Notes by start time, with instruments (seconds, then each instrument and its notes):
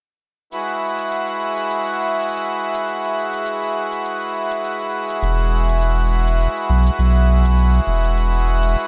0.52 accordion G#3 E4 F#4 B4, cabasa
0.68 cabasa
0.98 cabasa
1.11 cabasa
1.28 cabasa
1.57 cabasa
1.70 cabasa
1.87 cabasa
1.90 cabasa
1.93 cabasa
1.97 cabasa
2.03 cabasa
2.07 cabasa
2.12 cabasa
2.16 cabasa
2.22 cabasa
2.29 cabasa
2.37 cabasa
2.45 cabasa
2.74 cabasa
2.88 cabasa
3.04 cabasa
3.33 cabasa
3.46 cabasa
3.63 cabasa
3.92 cabasa
4.05 cabasa
4.22 cabasa
4.51 cabasa
4.64 cabasa
4.81 cabasa
5.10 cabasa
5.22 sub bass E1, cabasa
5.39 cabasa
5.69 cabasa
5.82 cabasa
5.98 cabasa
6.27 cabasa
6.40 cabasa
6.57 cabasa
6.69 sub bass B1
6.86 cabasa
6.99 sub bass B1, cabasa
7.16 cabasa
7.45 cabasa
7.58 cabasa
7.74 cabasa
7.87 sub bass E1
8.04 cabasa
8.17 cabasa
8.33 cabasa
8.63 cabasa